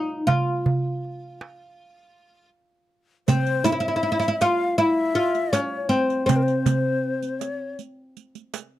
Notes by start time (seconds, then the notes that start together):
Already playing: D#4
0.10 darbuka ka
0.27 F4, darbuka dum
0.47 darbuka ka
0.66 darbuka dum
1.04 darbuka ka
1.41 darbuka tek
3.28 C4 C5, riq, darbuka dum
3.46 riq
3.64 E4 E5, riq
3.72 E4
3.80 E4
3.88 E4
3.96 E4
4.03 E4
4.12 E4
4.20 E4, riq
4.28 E4
4.41 F4 F5, riq, darbuka tek
4.78 E4 E5, riq
5.15 F4, riq
5.35 riq
5.53 C#4 C#5, riq, darbuka tek
5.89 C4 C5, riq, darbuka ka
6.10 riq, darbuka ka
6.26 C4 C5, riq, darbuka dum
6.36 A#4
6.43 C5
6.48 riq
6.66 riq, darbuka dum
7.04 darbuka ka
7.22 riq
7.39 C#5, riq
7.79 riq
8.17 riq
8.35 riq
8.54 riq, darbuka tek